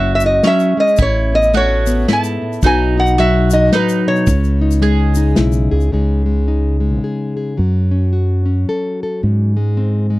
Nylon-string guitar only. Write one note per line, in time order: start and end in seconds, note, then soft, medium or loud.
0.00 0.44 F#3 medium
0.00 0.96 C#4 medium
0.00 0.24 E4 medium
0.24 0.97 E4 medium
0.45 0.77 F#3 medium
0.77 0.98 G#3 medium
0.99 2.08 A2 medium
1.33 1.87 B3 medium
1.54 2.60 A3 medium
1.87 2.63 B3 medium
2.08 2.41 G#2 medium
2.42 2.63 A2 medium
2.63 3.72 B2 medium
2.63 3.17 F#3 medium
2.63 2.97 D#4 medium
2.63 4.26 F#4 medium
2.63 4.26 B4 medium
2.98 3.53 D#4 medium
3.18 4.28 F#3 medium
3.53 4.31 D#4 medium
3.74 4.06 A2 medium
4.07 4.28 B2 medium
4.28 5.91 C#3 medium
4.61 5.16 D#4 medium
4.82 5.89 G#3 medium
5.17 5.90 D#4 medium
5.38 5.90 E4 medium
5.71 5.93 G#4 medium
5.92 7.57 C#3 medium
5.92 6.25 G#3 soft
5.92 6.47 D#4 soft
5.92 7.03 G#4 soft
6.26 6.79 G#3 soft
6.48 7.55 D#4 soft
6.80 7.54 G#3 soft
7.04 7.36 G#4 soft
7.37 7.58 G#4 soft
7.57 9.56 F#3 soft
7.91 8.44 C#4 medium
8.13 9.26 F#4 soft
8.46 9.20 C#4 soft
8.69 9.01 A4 soft
9.03 9.21 A4 soft
9.23 10.19 G#2 medium
9.57 10.09 G#3 medium
9.77 10.19 C4 soft
10.10 10.19 G#3 soft